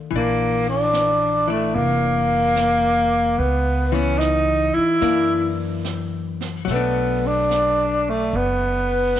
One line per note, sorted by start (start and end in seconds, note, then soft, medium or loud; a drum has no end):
0.00 0.10 D#3 soft
0.00 0.12 A3 soft
0.00 0.13 D4 soft
0.11 1.71 A#1 medium
0.11 1.46 E3 soft
0.11 brush sweep soft
0.16 0.66 A#3 medium
0.16 1.49 D4 soft
0.70 1.46 D4 medium
0.93 snare soft
0.93 hi-hat pedal soft
1.48 3.39 E3 soft
1.48 1.76 A3 medium
1.48 3.40 D4 soft
1.74 3.35 F1 medium
1.74 3.40 A#3 medium
1.74 brush sweep soft
2.56 snare soft
2.56 hi-hat pedal soft
3.38 4.73 C#2 medium
3.38 3.87 B3 medium
3.38 brush sweep soft
3.87 3.95 B3 soft
3.92 5.00 E3 soft
3.92 5.02 B3 soft
3.92 4.20 C#4 medium
4.18 4.76 D#4 medium
4.18 snare soft
4.18 hi-hat pedal soft
4.74 5.58 E4 medium
4.74 muted upright bass stroke soft
5.01 6.64 F#2 medium
5.01 6.64 E3 soft
5.01 6.68 A#3 soft
5.01 6.69 D4 soft
5.01 brush sweep soft
5.85 snare soft
5.85 hi-hat pedal soft
6.41 snare soft
6.65 8.29 B1 medium
6.65 9.20 F#3 soft
6.65 brush sweep soft
6.65 snare soft
6.71 9.20 A3 soft
6.71 7.28 B3 medium
6.76 9.20 D4 soft
7.27 8.11 D4 medium
7.51 snare soft
7.51 hi-hat pedal soft
8.10 8.38 A3 medium
8.33 9.20 F#1 medium
8.33 9.20 B3 medium
8.33 brush sweep soft
9.16 snare soft
9.16 hi-hat pedal soft